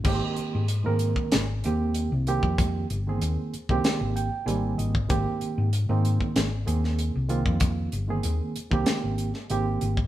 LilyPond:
<<
  \new Staff \with { instrumentName = "Reed electric piano" } { \time 4/4 \key aes \major \tempo 4 = 95 r1 | r2 r8 g''8 aes''8 ees''8 | r1 | r1 | }
  \new Staff \with { instrumentName = "Reed electric piano" } { \time 4/4 \key aes \major <ees aes bes c' g'>4 r16 <ees aes bes c' bes'>4 r16 <ees aes bes c' g'>8. r16 <ees aes bes c' g'>8~ | <ees aes bes c' g'>8 r16 <ees aes bes c' aes'>8. r16 <ees aes bes c' g'>4 r16 <ees g aes bes c'>8. r16 | <ees aes bes c' g'>4 r16 <ees aes bes c' ees'>4 r16 <ees aes bes c' aes'>8. r16 <ees aes bes c' f'>8~ | <ees aes bes c' f'>8 r16 <ees aes bes c' aes'>8. r16 <ees aes bes c' g'>4 r16 <ees aes bes c' g'>8. r16 | }
  \new Staff \with { instrumentName = "Fingered electric bass" } { \clef bass \time 4/4 \key aes \major aes,,16 r8 aes,8 aes,8 r16 aes,,8 ees,8. c,8 f,16~ | f,8 g,,8 ees,16 r8 c,16 r16 aes,,8 r16 aes,,8 aes,,8 | aes,,16 r8 aes,8 aes,8 r16 aes,,8 ees,8. c,8 f,16~ | f,8 g,,8 ees,16 r8 c,16 r16 aes,,8 r16 aes,,8 aes,,8 | }
  \new DrumStaff \with { instrumentName = "Drums" } \drummode { \time 4/4 <cymc bd>8 hh8 hh8 hh16 bd16 <hh sn>8 hh8 hh8 hh16 bd16 | <hh bd>8 hh8 hh8 hh16 bd16 <hh sn>8 hh8 hh8 hh16 bd16 | <hh bd>8 hh8 hh8 hh16 bd16 <hh sn>8 hh16 sn16 hh8 hh16 bd16 | <hh bd>8 hh8 hh8 hh16 bd16 <hh sn>8 hh16 sn16 hh8 hh16 bd16 | }
>>